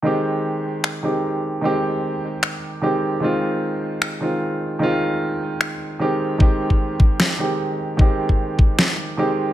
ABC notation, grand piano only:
X:1
M:4/4
L:1/8
Q:1/4=151
K:Ab
V:1 name="Grand piano"
[E,A,CG]4- [E,A,CG] [E,A,CG] z2 | [E,A,CG]6 [E,A,CG]2 | [E,A,CF]4- [E,A,CF] [E,A,CF] z2 | [E,A,CF]6 [E,A,CG]2 |
[E,A,CG]4- [E,A,CG] [E,A,CG] z2 | [E,A,CG]6 [E,A,CG]2 |]